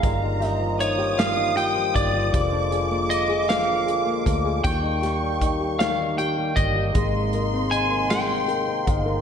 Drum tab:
HH |xxxxxx|xxxxxx|xxxxxx|xxxxxx|
SD |-o-o--|---o--|-o-o--|---o--|
BD |o----o|o----o|o-o--o|o----o|